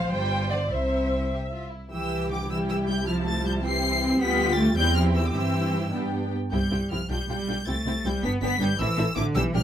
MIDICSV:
0, 0, Header, 1, 6, 480
1, 0, Start_track
1, 0, Key_signature, 0, "major"
1, 0, Tempo, 396040
1, 871, Time_signature, 6, 3, 24, 8
1, 2796, Tempo, 378310
1, 6636, Tempo, 392927
1, 9036, Tempo, 374532
1, 12026, End_track
2, 0, Start_track
2, 0, Title_t, "Violin section"
2, 0, Program_c, 0, 48
2, 163, Note_on_c, 0, 65, 74
2, 863, Note_off_c, 0, 65, 0
2, 868, Note_on_c, 0, 64, 61
2, 1557, Note_off_c, 0, 64, 0
2, 1609, Note_on_c, 0, 67, 69
2, 1704, Note_off_c, 0, 67, 0
2, 1847, Note_on_c, 0, 65, 58
2, 2082, Note_off_c, 0, 65, 0
2, 2087, Note_on_c, 0, 64, 51
2, 2325, Note_off_c, 0, 64, 0
2, 2327, Note_on_c, 0, 88, 89
2, 2764, Note_off_c, 0, 88, 0
2, 2797, Note_on_c, 0, 86, 79
2, 3037, Note_off_c, 0, 86, 0
2, 3050, Note_on_c, 0, 88, 87
2, 3145, Note_off_c, 0, 88, 0
2, 3288, Note_on_c, 0, 88, 84
2, 3383, Note_off_c, 0, 88, 0
2, 3524, Note_on_c, 0, 91, 87
2, 3760, Note_off_c, 0, 91, 0
2, 3767, Note_on_c, 0, 89, 86
2, 3863, Note_off_c, 0, 89, 0
2, 4016, Note_on_c, 0, 93, 92
2, 4245, Note_off_c, 0, 93, 0
2, 4250, Note_on_c, 0, 91, 84
2, 4344, Note_off_c, 0, 91, 0
2, 4486, Note_on_c, 0, 96, 117
2, 5182, Note_off_c, 0, 96, 0
2, 5208, Note_on_c, 0, 95, 108
2, 5669, Note_off_c, 0, 95, 0
2, 5676, Note_on_c, 0, 93, 107
2, 5909, Note_on_c, 0, 91, 126
2, 5912, Note_off_c, 0, 93, 0
2, 6145, Note_off_c, 0, 91, 0
2, 6151, Note_on_c, 0, 89, 102
2, 6248, Note_off_c, 0, 89, 0
2, 6406, Note_on_c, 0, 88, 88
2, 6518, Note_off_c, 0, 88, 0
2, 6542, Note_on_c, 0, 86, 87
2, 6637, Note_on_c, 0, 88, 90
2, 6650, Note_off_c, 0, 86, 0
2, 7364, Note_off_c, 0, 88, 0
2, 8090, Note_on_c, 0, 91, 89
2, 8529, Note_off_c, 0, 91, 0
2, 8551, Note_on_c, 0, 89, 86
2, 8788, Note_off_c, 0, 89, 0
2, 8798, Note_on_c, 0, 91, 94
2, 9011, Note_off_c, 0, 91, 0
2, 9026, Note_on_c, 0, 91, 95
2, 9508, Note_off_c, 0, 91, 0
2, 9519, Note_on_c, 0, 93, 100
2, 10004, Note_off_c, 0, 93, 0
2, 10010, Note_on_c, 0, 91, 90
2, 10237, Note_on_c, 0, 95, 109
2, 10247, Note_off_c, 0, 91, 0
2, 10333, Note_off_c, 0, 95, 0
2, 10463, Note_on_c, 0, 95, 109
2, 10702, Note_off_c, 0, 95, 0
2, 10719, Note_on_c, 0, 91, 106
2, 10948, Note_on_c, 0, 88, 122
2, 10953, Note_off_c, 0, 91, 0
2, 11424, Note_off_c, 0, 88, 0
2, 11425, Note_on_c, 0, 86, 106
2, 11522, Note_off_c, 0, 86, 0
2, 11664, Note_on_c, 0, 88, 125
2, 11762, Note_off_c, 0, 88, 0
2, 11923, Note_on_c, 0, 89, 101
2, 12026, Note_off_c, 0, 89, 0
2, 12026, End_track
3, 0, Start_track
3, 0, Title_t, "Violin section"
3, 0, Program_c, 1, 48
3, 0, Note_on_c, 1, 77, 86
3, 136, Note_on_c, 1, 79, 98
3, 142, Note_off_c, 1, 77, 0
3, 610, Note_off_c, 1, 79, 0
3, 614, Note_on_c, 1, 74, 83
3, 857, Note_on_c, 1, 72, 78
3, 865, Note_off_c, 1, 74, 0
3, 1600, Note_off_c, 1, 72, 0
3, 2323, Note_on_c, 1, 79, 60
3, 2326, Note_on_c, 1, 67, 61
3, 2990, Note_off_c, 1, 79, 0
3, 2991, Note_off_c, 1, 67, 0
3, 3047, Note_on_c, 1, 64, 59
3, 3049, Note_on_c, 1, 79, 62
3, 3754, Note_off_c, 1, 79, 0
3, 3764, Note_on_c, 1, 81, 70
3, 4468, Note_off_c, 1, 81, 0
3, 4479, Note_on_c, 1, 67, 65
3, 4483, Note_on_c, 1, 79, 71
3, 4486, Note_off_c, 1, 64, 0
3, 5170, Note_off_c, 1, 67, 0
3, 5173, Note_off_c, 1, 79, 0
3, 5185, Note_on_c, 1, 67, 82
3, 5188, Note_on_c, 1, 79, 80
3, 5855, Note_off_c, 1, 67, 0
3, 5856, Note_off_c, 1, 79, 0
3, 5898, Note_on_c, 1, 67, 75
3, 5904, Note_on_c, 1, 79, 75
3, 6613, Note_off_c, 1, 79, 0
3, 6615, Note_off_c, 1, 67, 0
3, 6628, Note_on_c, 1, 79, 77
3, 6629, Note_on_c, 1, 67, 66
3, 7337, Note_off_c, 1, 79, 0
3, 7340, Note_off_c, 1, 67, 0
3, 7352, Note_on_c, 1, 79, 57
3, 7355, Note_on_c, 1, 67, 64
3, 7838, Note_off_c, 1, 79, 0
3, 7840, Note_off_c, 1, 67, 0
3, 8082, Note_on_c, 1, 67, 69
3, 8082, Note_on_c, 1, 79, 64
3, 8178, Note_off_c, 1, 67, 0
3, 8178, Note_off_c, 1, 79, 0
3, 8312, Note_on_c, 1, 67, 58
3, 8318, Note_on_c, 1, 79, 51
3, 8409, Note_off_c, 1, 67, 0
3, 8415, Note_off_c, 1, 79, 0
3, 8559, Note_on_c, 1, 67, 55
3, 8564, Note_on_c, 1, 79, 54
3, 8654, Note_off_c, 1, 67, 0
3, 8658, Note_off_c, 1, 79, 0
3, 8784, Note_on_c, 1, 67, 57
3, 8789, Note_on_c, 1, 79, 58
3, 8881, Note_off_c, 1, 67, 0
3, 8885, Note_off_c, 1, 79, 0
3, 9029, Note_on_c, 1, 79, 59
3, 9030, Note_on_c, 1, 67, 55
3, 9128, Note_off_c, 1, 67, 0
3, 9128, Note_off_c, 1, 79, 0
3, 9281, Note_on_c, 1, 79, 56
3, 9282, Note_on_c, 1, 67, 56
3, 9377, Note_off_c, 1, 79, 0
3, 9378, Note_off_c, 1, 67, 0
3, 9523, Note_on_c, 1, 67, 67
3, 9527, Note_on_c, 1, 79, 68
3, 9620, Note_off_c, 1, 67, 0
3, 9623, Note_off_c, 1, 79, 0
3, 9761, Note_on_c, 1, 79, 61
3, 9764, Note_on_c, 1, 67, 60
3, 9859, Note_off_c, 1, 79, 0
3, 9861, Note_off_c, 1, 67, 0
3, 9996, Note_on_c, 1, 79, 62
3, 10001, Note_on_c, 1, 67, 61
3, 10094, Note_off_c, 1, 79, 0
3, 10097, Note_off_c, 1, 67, 0
3, 10234, Note_on_c, 1, 79, 64
3, 10239, Note_on_c, 1, 71, 68
3, 10331, Note_off_c, 1, 79, 0
3, 10335, Note_off_c, 1, 71, 0
3, 10477, Note_on_c, 1, 71, 68
3, 10478, Note_on_c, 1, 79, 67
3, 10572, Note_off_c, 1, 71, 0
3, 10573, Note_off_c, 1, 79, 0
3, 10718, Note_on_c, 1, 71, 71
3, 10718, Note_on_c, 1, 79, 76
3, 10812, Note_off_c, 1, 71, 0
3, 10812, Note_off_c, 1, 79, 0
3, 10966, Note_on_c, 1, 69, 86
3, 10968, Note_on_c, 1, 76, 94
3, 11058, Note_off_c, 1, 69, 0
3, 11060, Note_off_c, 1, 76, 0
3, 11187, Note_on_c, 1, 69, 79
3, 11187, Note_on_c, 1, 76, 74
3, 11282, Note_off_c, 1, 69, 0
3, 11283, Note_off_c, 1, 76, 0
3, 11433, Note_on_c, 1, 69, 72
3, 11433, Note_on_c, 1, 76, 73
3, 11528, Note_off_c, 1, 69, 0
3, 11528, Note_off_c, 1, 76, 0
3, 11670, Note_on_c, 1, 79, 82
3, 11672, Note_on_c, 1, 67, 79
3, 11768, Note_off_c, 1, 79, 0
3, 11769, Note_off_c, 1, 67, 0
3, 11907, Note_on_c, 1, 79, 73
3, 11910, Note_on_c, 1, 67, 77
3, 12008, Note_off_c, 1, 79, 0
3, 12010, Note_off_c, 1, 67, 0
3, 12026, End_track
4, 0, Start_track
4, 0, Title_t, "Viola section"
4, 0, Program_c, 2, 48
4, 0, Note_on_c, 2, 72, 82
4, 870, Note_off_c, 2, 72, 0
4, 872, Note_on_c, 2, 76, 73
4, 1944, Note_off_c, 2, 76, 0
4, 2320, Note_on_c, 2, 67, 69
4, 2321, Note_on_c, 2, 52, 63
4, 2988, Note_off_c, 2, 52, 0
4, 3039, Note_on_c, 2, 55, 60
4, 3762, Note_on_c, 2, 53, 66
4, 3763, Note_off_c, 2, 55, 0
4, 4430, Note_off_c, 2, 67, 0
4, 4467, Note_off_c, 2, 53, 0
4, 4479, Note_on_c, 2, 52, 65
4, 4480, Note_on_c, 2, 64, 66
4, 5192, Note_on_c, 2, 55, 84
4, 5193, Note_off_c, 2, 52, 0
4, 5194, Note_off_c, 2, 64, 0
4, 5196, Note_on_c, 2, 65, 85
4, 5858, Note_off_c, 2, 55, 0
4, 5860, Note_off_c, 2, 65, 0
4, 5908, Note_on_c, 2, 64, 77
4, 5910, Note_on_c, 2, 60, 76
4, 6622, Note_off_c, 2, 60, 0
4, 6624, Note_off_c, 2, 64, 0
4, 6636, Note_on_c, 2, 60, 69
4, 6639, Note_on_c, 2, 64, 72
4, 7349, Note_off_c, 2, 60, 0
4, 7350, Note_off_c, 2, 64, 0
4, 7360, Note_on_c, 2, 62, 67
4, 7361, Note_on_c, 2, 59, 62
4, 7843, Note_off_c, 2, 59, 0
4, 7852, Note_off_c, 2, 62, 0
4, 8086, Note_on_c, 2, 60, 64
4, 8089, Note_on_c, 2, 64, 70
4, 8181, Note_off_c, 2, 60, 0
4, 8184, Note_off_c, 2, 64, 0
4, 8318, Note_on_c, 2, 64, 56
4, 8320, Note_on_c, 2, 60, 52
4, 8415, Note_off_c, 2, 64, 0
4, 8416, Note_off_c, 2, 60, 0
4, 8556, Note_on_c, 2, 64, 58
4, 8559, Note_on_c, 2, 60, 55
4, 8652, Note_off_c, 2, 64, 0
4, 8654, Note_off_c, 2, 60, 0
4, 8790, Note_on_c, 2, 65, 62
4, 8792, Note_on_c, 2, 62, 59
4, 8886, Note_off_c, 2, 65, 0
4, 8888, Note_off_c, 2, 62, 0
4, 9028, Note_on_c, 2, 65, 58
4, 9030, Note_on_c, 2, 62, 56
4, 9127, Note_off_c, 2, 65, 0
4, 9129, Note_off_c, 2, 62, 0
4, 9274, Note_on_c, 2, 65, 59
4, 9277, Note_on_c, 2, 62, 54
4, 9372, Note_off_c, 2, 65, 0
4, 9375, Note_off_c, 2, 62, 0
4, 9516, Note_on_c, 2, 60, 67
4, 9517, Note_on_c, 2, 64, 66
4, 9614, Note_off_c, 2, 60, 0
4, 9615, Note_off_c, 2, 64, 0
4, 9758, Note_on_c, 2, 64, 60
4, 9759, Note_on_c, 2, 60, 57
4, 9856, Note_off_c, 2, 64, 0
4, 9857, Note_off_c, 2, 60, 0
4, 10002, Note_on_c, 2, 60, 63
4, 10005, Note_on_c, 2, 64, 58
4, 10099, Note_off_c, 2, 60, 0
4, 10101, Note_off_c, 2, 64, 0
4, 10237, Note_on_c, 2, 59, 69
4, 10237, Note_on_c, 2, 62, 73
4, 10333, Note_off_c, 2, 59, 0
4, 10333, Note_off_c, 2, 62, 0
4, 10478, Note_on_c, 2, 62, 68
4, 10480, Note_on_c, 2, 59, 76
4, 10573, Note_off_c, 2, 62, 0
4, 10574, Note_off_c, 2, 59, 0
4, 10708, Note_on_c, 2, 59, 77
4, 10711, Note_on_c, 2, 62, 75
4, 10804, Note_off_c, 2, 59, 0
4, 10806, Note_off_c, 2, 62, 0
4, 10951, Note_on_c, 2, 60, 88
4, 10953, Note_on_c, 2, 64, 83
4, 11046, Note_off_c, 2, 60, 0
4, 11048, Note_off_c, 2, 64, 0
4, 11189, Note_on_c, 2, 60, 69
4, 11192, Note_on_c, 2, 64, 74
4, 11284, Note_off_c, 2, 60, 0
4, 11286, Note_off_c, 2, 64, 0
4, 11418, Note_on_c, 2, 60, 76
4, 11421, Note_on_c, 2, 64, 75
4, 11516, Note_off_c, 2, 60, 0
4, 11518, Note_off_c, 2, 64, 0
4, 11670, Note_on_c, 2, 55, 79
4, 11671, Note_on_c, 2, 62, 77
4, 11767, Note_off_c, 2, 55, 0
4, 11768, Note_off_c, 2, 62, 0
4, 11909, Note_on_c, 2, 55, 77
4, 11911, Note_on_c, 2, 62, 76
4, 12009, Note_off_c, 2, 55, 0
4, 12011, Note_off_c, 2, 62, 0
4, 12026, End_track
5, 0, Start_track
5, 0, Title_t, "Cello section"
5, 0, Program_c, 3, 48
5, 0, Note_on_c, 3, 53, 80
5, 148, Note_off_c, 3, 53, 0
5, 149, Note_on_c, 3, 55, 91
5, 623, Note_on_c, 3, 50, 72
5, 626, Note_off_c, 3, 55, 0
5, 720, Note_off_c, 3, 50, 0
5, 868, Note_on_c, 3, 48, 68
5, 1591, Note_off_c, 3, 48, 0
5, 2319, Note_on_c, 3, 52, 73
5, 2760, Note_off_c, 3, 52, 0
5, 2789, Note_on_c, 3, 50, 68
5, 3036, Note_on_c, 3, 52, 71
5, 3037, Note_off_c, 3, 50, 0
5, 3267, Note_off_c, 3, 52, 0
5, 3283, Note_on_c, 3, 52, 78
5, 3379, Note_off_c, 3, 52, 0
5, 3518, Note_on_c, 3, 55, 80
5, 3616, Note_off_c, 3, 55, 0
5, 3762, Note_on_c, 3, 53, 84
5, 3998, Note_off_c, 3, 53, 0
5, 4004, Note_on_c, 3, 57, 81
5, 4243, Note_on_c, 3, 55, 84
5, 4244, Note_off_c, 3, 57, 0
5, 4482, Note_off_c, 3, 55, 0
5, 4482, Note_on_c, 3, 60, 92
5, 5180, Note_off_c, 3, 60, 0
5, 5195, Note_on_c, 3, 59, 105
5, 5669, Note_on_c, 3, 57, 93
5, 5671, Note_off_c, 3, 59, 0
5, 5903, Note_on_c, 3, 55, 91
5, 5904, Note_off_c, 3, 57, 0
5, 6139, Note_on_c, 3, 53, 92
5, 6142, Note_off_c, 3, 55, 0
5, 6381, Note_off_c, 3, 53, 0
5, 6389, Note_on_c, 3, 52, 78
5, 6505, Note_on_c, 3, 50, 69
5, 6509, Note_off_c, 3, 52, 0
5, 6632, Note_off_c, 3, 50, 0
5, 6637, Note_on_c, 3, 52, 78
5, 7364, Note_off_c, 3, 52, 0
5, 8084, Note_on_c, 3, 55, 79
5, 8526, Note_off_c, 3, 55, 0
5, 8561, Note_on_c, 3, 53, 75
5, 8796, Note_on_c, 3, 55, 82
5, 8798, Note_off_c, 3, 53, 0
5, 9017, Note_off_c, 3, 55, 0
5, 9031, Note_on_c, 3, 55, 84
5, 9511, Note_off_c, 3, 55, 0
5, 9526, Note_on_c, 3, 57, 86
5, 9998, Note_off_c, 3, 57, 0
5, 10004, Note_on_c, 3, 55, 87
5, 10242, Note_on_c, 3, 59, 97
5, 10244, Note_off_c, 3, 55, 0
5, 10462, Note_off_c, 3, 59, 0
5, 10478, Note_on_c, 3, 59, 101
5, 10709, Note_off_c, 3, 59, 0
5, 10713, Note_on_c, 3, 55, 98
5, 10945, Note_off_c, 3, 55, 0
5, 10945, Note_on_c, 3, 52, 98
5, 11414, Note_off_c, 3, 52, 0
5, 11425, Note_on_c, 3, 50, 96
5, 11661, Note_off_c, 3, 50, 0
5, 11668, Note_on_c, 3, 52, 103
5, 11911, Note_on_c, 3, 53, 103
5, 11913, Note_off_c, 3, 52, 0
5, 12026, Note_off_c, 3, 53, 0
5, 12026, End_track
6, 0, Start_track
6, 0, Title_t, "Double bass section"
6, 0, Program_c, 4, 48
6, 147, Note_on_c, 4, 31, 80
6, 867, Note_on_c, 4, 36, 70
6, 869, Note_off_c, 4, 31, 0
6, 2085, Note_off_c, 4, 36, 0
6, 2326, Note_on_c, 4, 36, 69
6, 5145, Note_off_c, 4, 36, 0
6, 5195, Note_on_c, 4, 38, 84
6, 5860, Note_off_c, 4, 38, 0
6, 5904, Note_on_c, 4, 40, 94
6, 6631, Note_on_c, 4, 43, 81
6, 6633, Note_off_c, 4, 40, 0
6, 7346, Note_off_c, 4, 43, 0
6, 7360, Note_on_c, 4, 43, 70
6, 7842, Note_off_c, 4, 43, 0
6, 8087, Note_on_c, 4, 36, 71
6, 8182, Note_off_c, 4, 36, 0
6, 8323, Note_on_c, 4, 36, 65
6, 8418, Note_off_c, 4, 36, 0
6, 8555, Note_on_c, 4, 36, 60
6, 8651, Note_off_c, 4, 36, 0
6, 8795, Note_on_c, 4, 35, 70
6, 8890, Note_off_c, 4, 35, 0
6, 9024, Note_on_c, 4, 35, 66
6, 9124, Note_off_c, 4, 35, 0
6, 9267, Note_on_c, 4, 35, 68
6, 9367, Note_off_c, 4, 35, 0
6, 9510, Note_on_c, 4, 36, 69
6, 9610, Note_off_c, 4, 36, 0
6, 9747, Note_on_c, 4, 36, 74
6, 9847, Note_off_c, 4, 36, 0
6, 9996, Note_on_c, 4, 36, 72
6, 10094, Note_off_c, 4, 36, 0
6, 10236, Note_on_c, 4, 31, 85
6, 10332, Note_off_c, 4, 31, 0
6, 10478, Note_on_c, 4, 31, 80
6, 10572, Note_off_c, 4, 31, 0
6, 10711, Note_on_c, 4, 31, 86
6, 10806, Note_off_c, 4, 31, 0
6, 10950, Note_on_c, 4, 33, 92
6, 11045, Note_off_c, 4, 33, 0
6, 11189, Note_on_c, 4, 33, 87
6, 11284, Note_off_c, 4, 33, 0
6, 11436, Note_on_c, 4, 33, 87
6, 11530, Note_off_c, 4, 33, 0
6, 11675, Note_on_c, 4, 35, 98
6, 11771, Note_off_c, 4, 35, 0
6, 11922, Note_on_c, 4, 35, 90
6, 12019, Note_off_c, 4, 35, 0
6, 12026, End_track
0, 0, End_of_file